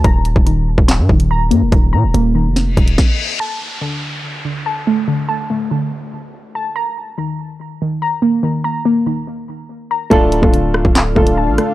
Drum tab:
HH |x-x-x---x--x--x-|x---x---x-xx----|----------------|----------------|
CP |--------x-------|----------------|----------------|----------------|
SD |--------o-------|--------o---o---|----------------|----------------|
BD |o--o---o--o-----|o---------o-o---|----------------|----------------|

HH |----------------|----------------|x-x-x---x--x--x-|
CP |----------------|----------------|--------x-------|
SD |----------------|----------------|------r-o-----r-|
BD |----------------|----------------|o--o---o--o-----|